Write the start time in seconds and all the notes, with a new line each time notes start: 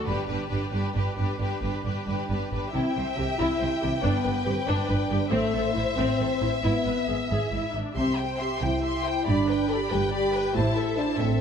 0.06 G1 G2 D4 G4 B4
0.27 G1 G2 D4 G4 B4
0.48 G1 G2 D4 B4
0.52 G4
0.71 G1 G2 D4 G4 B4
0.94 G1 G2 D4 G4 B4
1.17 G1 G2 D4 G4 B4
1.40 G1 G2 D4 G4 B4
1.62 G1 G2 D4 G4 B4
1.85 G1 G2 D4 G4 B4
2.06 G1 G2 D4 G4 B4
2.29 G1 G2 D4 G4 B4
2.52 G1 G2 D4 G4 B4
2.73 C2 C3 C4 E4 E5 G5
2.96 C2 C3 C5
3.18 C2 C3 G4
3.37 C2 C3 E4
3.60 C2 C3 C5
3.81 C2 C3 G4
4.03 G1 G2 B3 D4 B4
4.25 G1 G2 B4
4.46 G1 G2 C4 G4
4.67 G1 G2 D4
4.89 G1 G2 B4
5.10 G1 G2 G4
5.30 A1 A2 A3 C4 C5 E5
5.54 A1 A2 A4
5.73 A1 A2 E4
5.96 A1 A2 C4
6.19 A1 A2 A4
6.41 A1 A2 E4
6.63 G#1 G#2 B3 E4 E5
6.85 G#1 G#2 B4
7.08 G#1 G#2 G#4
7.30 G#1 G#2 G#4
7.52 G#1 G#2 E4
7.74 G#1 G#2 D4
7.96 C2 C3 C4 G4 E5 C6
8.17 C5 G5
8.39 G4 E5 C6
8.61 C2 C3 E4 C5 G5
8.83 G4 E5 C6
9.04 C5 G5
9.26 G1 G2 D4 G4 D5 B5
9.49 B4 G5
9.69 G4 A4 D5 B5
9.91 G1 G2 G4 B4 G5
10.12 G4 D5 B5
10.34 B4 G5
10.55 A1 A2 E4 C5 A5
10.76 A4 E5
10.97 D4 E4 C5 A5
11.19 A1 A2 C4 A4 E5